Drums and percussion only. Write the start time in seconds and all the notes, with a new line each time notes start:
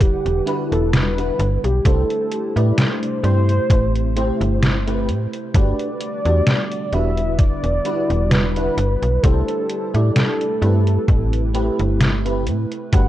0.01 kick, closed hi-hat
0.26 closed hi-hat
0.47 closed hi-hat
0.72 closed hi-hat
0.93 snare, closed hi-hat
1.18 closed hi-hat
1.39 closed hi-hat
1.64 closed hi-hat
1.85 kick, closed hi-hat
2.10 closed hi-hat
2.32 closed hi-hat
2.57 closed hi-hat
2.78 snare, closed hi-hat
3.03 closed hi-hat
3.24 closed hi-hat
3.49 closed hi-hat
3.70 kick, closed hi-hat
3.95 closed hi-hat
4.16 closed hi-hat
4.41 closed hi-hat
4.63 snare, closed hi-hat
4.88 closed hi-hat
5.09 closed hi-hat
5.33 closed hi-hat
5.54 kick, closed hi-hat
5.79 closed hi-hat
6.01 closed hi-hat
6.26 closed hi-hat
6.47 snare, closed hi-hat
6.72 closed hi-hat
6.93 closed hi-hat
7.18 closed hi-hat
7.39 kick, closed hi-hat
7.64 closed hi-hat
7.85 closed hi-hat
8.10 closed hi-hat
8.31 snare, closed hi-hat
8.56 closed hi-hat
8.78 closed hi-hat
9.02 closed hi-hat
9.23 kick, closed hi-hat
9.48 closed hi-hat
9.70 closed hi-hat
9.95 closed hi-hat
10.16 snare, closed hi-hat
10.41 closed hi-hat
10.62 closed hi-hat
10.87 closed hi-hat
11.08 kick, closed hi-hat
11.33 closed hi-hat
11.54 closed hi-hat
11.79 closed hi-hat
12.00 snare, closed hi-hat
12.26 closed hi-hat
12.47 closed hi-hat
12.72 closed hi-hat
12.93 kick, closed hi-hat